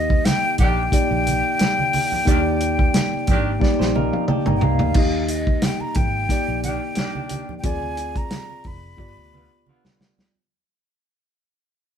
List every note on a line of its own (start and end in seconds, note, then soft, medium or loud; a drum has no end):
0.00 0.18 D#2 medium
0.00 0.76 A#3 medium
0.00 0.77 D#4 medium
0.00 0.77 G4 medium
0.00 0.27 D#5 medium
0.00 0.81 D#5 medium
0.10 kick medium
0.25 0.58 G5 loud
0.25 snare medium
0.25 closed hi-hat medium
0.25 muted conga soft
0.25 high conga medium
0.58 0.89 A#1 medium
0.58 0.81 D#3 medium
0.58 0.81 D4 medium
0.58 0.81 G4 medium
0.58 4.24 G5 loud
0.58 kick loud
0.58 closed hi-hat medium
0.58 low conga medium
0.92 2.11 A#3 medium
0.92 2.11 D#4 medium
0.92 2.12 G4 medium
0.92 2.12 D5 medium
0.92 kick medium
0.92 closed hi-hat loud
1.11 1.41 A#1 medium
1.11 muted conga soft
1.27 closed hi-hat medium
1.27 high conga medium
1.59 snare loud
1.59 closed hi-hat medium
1.59 high conga medium
1.79 high conga medium
1.93 open hi-hat medium
1.93 high conga medium
2.12 low conga medium
2.25 2.87 D#2 medium
2.25 2.39 D#3 medium
2.25 3.45 A#3 medium
2.25 2.39 D4 medium
2.25 3.45 D#4 medium
2.25 2.38 G4 medium
2.25 3.46 G4 medium
2.25 3.46 D5 loud
2.25 kick loud
2.25 closed hi-hat medium
2.25 muted conga soft
2.60 closed hi-hat medium
2.79 kick medium
2.94 snare loud
2.94 closed hi-hat medium
2.94 muted conga soft
2.94 high conga medium
3.13 muted conga soft
3.27 3.58 G#1 medium
3.27 3.49 D#3 medium
3.27 3.49 D4 medium
3.27 3.49 G4 medium
3.27 kick medium
3.27 closed hi-hat medium
3.27 low conga medium
3.60 4.79 A#3 medium
3.60 4.80 D#4 medium
3.60 4.80 G4 medium
3.60 4.81 D5 medium
3.60 kick medium
3.60 snare medium
3.79 4.10 A#1 medium
3.79 3.95 G4 medium
3.79 3.94 C5 medium
3.79 snare medium
3.79 muted conga soft
3.95 4.27 F4 medium
3.95 4.27 A#4 medium
3.95 4.12 D#5 medium
3.95 high tom medium
3.95 high conga medium
4.13 4.28 F5 medium
4.13 high tom medium
4.28 4.46 D4 medium
4.28 4.46 G4 medium
4.28 4.46 G5 medium
4.28 mid tom medium
4.28 muted conga soft
4.28 high conga medium
4.46 4.61 G1 medium
4.46 4.93 A#3 medium
4.46 4.93 D#4 medium
4.46 4.61 A#5 medium
4.46 mid tom medium
4.46 muted conga soft
4.46 high conga medium
4.57 4.64 G5 medium
4.61 4.79 C2 medium
4.61 5.32 F5 medium
4.61 4.94 A#5 medium
4.61 floor tom medium
4.61 high conga medium
4.79 4.94 D2 medium
4.79 floor tom medium
4.79 low conga medium
4.94 5.56 D#2 loud
4.94 6.14 A#3 medium
4.94 6.15 D#4 medium
4.94 6.15 G4 medium
4.94 6.16 D#5 medium
4.94 kick loud
4.94 crash medium
4.94 low conga medium
5.28 5.65 D#5 medium
5.28 closed hi-hat medium
5.47 kick medium
5.62 5.82 G5 medium
5.62 snare medium
5.62 closed hi-hat medium
5.62 high conga medium
5.81 5.98 A#5 medium
5.81 muted conga soft
5.94 6.26 G#1 medium
5.94 6.63 G5 loud
5.94 kick loud
5.94 closed hi-hat medium
5.94 high conga medium
5.94 low conga medium
6.29 7.48 A#3 medium
6.29 7.49 D#4 medium
6.29 7.49 G4 medium
6.29 7.49 D5 medium
6.29 kick medium
6.29 snare soft
6.29 closed hi-hat loud
6.48 6.78 A#1 medium
6.63 6.79 D#3 medium
6.63 6.79 D4 medium
6.63 6.79 G4 medium
6.63 7.54 G5 loud
6.63 closed hi-hat medium
6.63 high conga medium
6.95 7.46 D#3 medium
6.95 7.46 D4 medium
6.95 7.46 G4 medium
6.95 snare loud
6.95 closed hi-hat medium
6.95 muted conga soft
6.95 high conga medium
7.15 muted conga soft
7.15 high conga medium
7.29 closed hi-hat medium
7.29 high conga medium
7.49 low conga medium
7.59 7.66 G5 medium
7.63 8.24 D2 medium
7.63 8.83 C4 medium
7.63 8.83 F4 medium
7.63 8.83 G#4 medium
7.63 8.84 D5 medium
7.63 8.19 G#5 loud
7.63 kick loud
7.63 closed hi-hat medium
7.63 low conga medium
7.82 muted conga soft
7.97 closed hi-hat medium
8.15 8.69 A#5 loud
8.15 kick loud
8.15 closed hi-hat soft
8.30 snare loud
8.30 closed hi-hat medium
8.30 muted conga soft
8.30 high conga medium
8.50 muted conga soft
8.64 8.95 F1 medium
8.64 10.01 B5 loud
8.64 kick medium
8.64 open hi-hat soft
8.64 high conga soft
8.64 low conga medium
8.97 9.15 G1 loud
8.97 10.17 B3 medium
8.97 10.17 F4 medium
8.97 10.18 G4 medium
8.97 10.18 D5 medium
8.97 kick medium
8.97 muted conga soft
9.17 9.47 D2 medium
9.17 muted conga soft
9.32 9.48 D3 medium
9.32 9.48 B3 medium
9.32 9.48 F4 medium
9.32 high conga medium
9.66 10.16 D3 medium
9.66 10.15 B3 medium
9.66 10.15 F4 medium
9.66 muted conga soft
9.66 high conga medium
9.85 snare medium
9.85 muted conga soft
9.85 high conga medium
10.00 snare medium
10.00 high conga medium
10.18 snare medium
10.18 low conga medium